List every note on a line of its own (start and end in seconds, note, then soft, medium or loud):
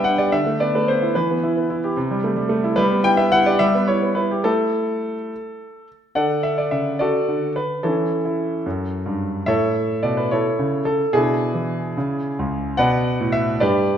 0.00 0.29 G3 medium
0.00 0.34 B3 soft
0.00 0.04 D4 soft
0.00 0.34 B4 medium
0.00 0.32 E5 medium
0.00 0.34 G5 medium
0.04 0.26 D4 soft
0.04 0.18 F#5 medium
0.18 0.32 G4 soft
0.18 0.32 D5 medium
0.32 1.12 D3 medium
0.32 0.60 E5 medium
0.47 0.68 A3 soft
0.60 0.82 B3 soft
0.60 0.73 D5 medium
0.75 0.96 A3 soft
0.75 0.88 B4 medium
0.88 1.10 B3 soft
0.88 1.15 C5 medium
1.02 1.15 E4 medium
1.15 1.95 E3 medium
1.15 2.52 B4 medium
1.31 1.52 B3 soft
1.43 1.65 E4 medium
1.57 1.78 B3 soft
1.70 1.91 E4 soft
1.84 1.97 G4 medium
1.97 2.76 C3 medium
2.11 2.32 G3 medium
2.24 2.46 A3 soft
2.36 2.59 G3 medium
2.49 2.72 A3 medium
2.64 2.78 E4 medium
2.76 3.58 G3 medium
2.76 3.04 B4 medium
2.90 3.13 B3 soft
3.04 3.27 E4 medium
3.04 3.19 G5 loud
3.17 3.41 B3 soft
3.17 3.32 E5 medium
3.32 3.55 E4 medium
3.32 3.46 F#5 loud
3.46 3.69 G4 medium
3.46 3.61 D5 medium
3.59 4.43 G3 medium
3.59 3.88 E5 loud
3.75 3.98 B3 medium
3.88 4.12 E4 soft
3.88 4.17 C#5 medium
4.02 4.25 B3 soft
4.15 4.39 E4 medium
4.15 4.44 B4 medium
4.31 4.46 G4 medium
4.44 5.05 A3 medium
4.44 5.13 E4 soft
4.44 5.87 A4 medium
6.15 6.61 D3 soft
6.15 6.42 A4 medium
6.15 6.42 D5 medium
6.15 6.44 F#5 medium
6.43 6.58 E5 medium
6.58 6.72 D5 medium
6.71 7.16 C#3 soft
6.71 7.00 E5 medium
6.99 7.52 F#4 soft
6.99 7.52 A4 medium
6.99 7.55 D5 medium
7.28 7.72 D3 soft
7.56 7.83 B4 medium
7.83 8.17 E3 medium
7.83 9.45 C#4 soft
7.83 8.24 E4 soft
7.83 9.47 A4 medium
8.25 8.58 E4 soft
8.66 8.99 F#2 soft
9.06 9.39 G2 soft
9.46 9.92 A2 medium
9.46 9.99 A4 medium
9.46 9.99 C#5 medium
9.46 10.02 E5 medium
10.03 10.47 B2 soft
10.03 10.17 D5 medium
10.17 10.31 B4 medium
10.31 10.82 E4 soft
10.31 10.83 A4 medium
10.31 10.86 C#5 medium
10.59 11.02 C#3 medium
10.85 11.13 A4 medium
11.13 11.46 B2 medium
11.13 12.75 D4 medium
11.13 12.75 E4 medium
11.13 12.79 G#4 medium
11.54 11.87 E3 medium
11.97 12.30 C#3 medium
12.39 12.71 C#2 medium
12.77 13.11 B2 medium
12.77 13.30 B4 medium
12.77 13.30 D5 medium
12.77 13.33 F#5 medium
13.20 13.53 A2 medium
13.32 13.60 E5 medium
13.60 13.94 G2 medium
13.60 13.98 G4 medium
13.60 13.98 B4 medium
13.60 13.98 D5 medium